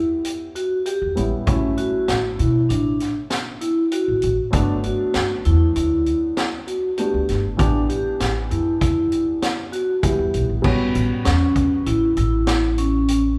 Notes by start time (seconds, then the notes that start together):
Already playing: B3 C#4 E4 G4
0.25 closed hi-hat
0.56 F#4, closed hi-hat
0.86 G4, closed hi-hat
1.02 E2
1.16 A1 G3 B3 C#4 E4, closed hi-hat
1.46 A1 F#3 A3 C#4 E4, kick, closed hi-hat
1.78 F#4, closed hi-hat
2.08 A1, snare, closed hi-hat
2.39 B2 E4, closed hi-hat
2.69 A1 D4, closed hi-hat
3.00 snare, closed hi-hat
3.30 snare, closed hi-hat
3.61 E4, closed hi-hat
3.92 F#4, closed hi-hat
4.08 A1
4.22 A1, closed hi-hat
4.51 G1 F#3 A3 B3 D4, kick, closed hi-hat
4.84 F#4, closed hi-hat
5.14 G1, snare, closed hi-hat
5.45 E2 E4, closed hi-hat
5.76 D2 E4, closed hi-hat
6.06 closed hi-hat
6.37 snare, closed hi-hat
6.67 F#4, closed hi-hat
6.98 A3 B3 D4 F#4 G4, closed hi-hat
7.14 D2
7.29 G1, snare, closed hi-hat
7.57 A1 E3 B3 D4 G4, kick, closed hi-hat
7.90 G4, closed hi-hat
8.20 A1, snare, closed hi-hat
8.51 F#2 E4, closed hi-hat
8.81 E2 E4, kick, closed hi-hat
9.12 closed hi-hat
9.42 snare, closed hi-hat
9.72 F#4, closed hi-hat
10.03 E3 G3 B3 E4 G4, kick, closed hi-hat
10.19 E2
10.34 B1, closed hi-hat
10.49 A1
10.62 A1 G3 B3 C#4 F#4, kick, crash
10.95 A1, closed hi-hat
11.25 E2 C#4, snare, closed hi-hat
11.56 E2, kick, closed hi-hat
11.86 A1 E4, closed hi-hat
12.17 A1 E4, closed hi-hat
12.47 snare, closed hi-hat
12.78 C#4, closed hi-hat
13.08 closed hi-hat